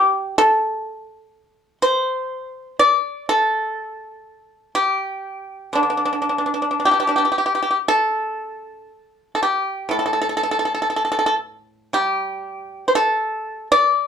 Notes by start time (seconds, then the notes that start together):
Already playing: C3 G4
0.38 A4
1.82 C5
2.79 D5
3.29 A4
4.75 G4
5.73 D3 D4
5.83 D4
5.90 D4
5.97 D4
6.05 D4
6.13 D4
6.22 D4
6.29 D4
6.38 D4
6.46 D4
6.54 D4
6.62 D4
6.71 D4
6.80 D4
6.85 D4 G4
6.91 D4 G4
7.00 D4 G4
7.07 D4 G4
7.16 D4 G4
7.25 G4
7.32 G4
7.38 G4
7.46 G4
7.55 G4
7.62 G4
7.71 G4
7.88 A4
9.35 A4
9.43 G4
9.89 A2 A4
9.99 A4
10.06 A4
10.13 A4
10.22 A4
10.29 A4
10.37 A4
10.43 A4
10.51 A4
10.59 A4
10.65 A4
10.75 A4
10.82 A4
10.90 A4
10.96 A4
11.05 A4
11.12 A4
11.19 A4
11.26 A4
11.93 G3 G4
12.88 C5
12.95 A4
13.72 D5